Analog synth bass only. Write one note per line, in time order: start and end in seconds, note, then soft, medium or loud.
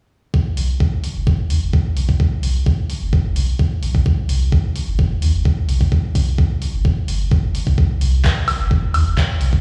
0.57 1.11 C2 medium
1.16 1.46 G1 medium
1.50 1.59 D#2 loud
1.62 1.71 G1 medium
1.97 2.06 C2 medium
2.43 2.97 C2 medium
3.02 3.20 G1 medium
3.25 3.34 G1 medium
3.36 3.45 C2 loud
3.83 3.92 A#1 medium
3.95 4.03 C2 medium
4.29 4.83 C2 medium
4.88 5.18 G1 medium
5.22 5.31 D#2 loud
5.34 5.43 G1 medium
5.69 5.78 C2 medium
6.15 6.69 C2 medium
6.74 6.92 G1 medium
7.08 7.62 G1 medium
7.67 7.75 C2 medium
8.01 8.56 C2 loud
8.60 8.90 G1 medium
8.94 9.04 D#2 loud
9.06 9.15 G1 medium
9.41 9.50 C2 medium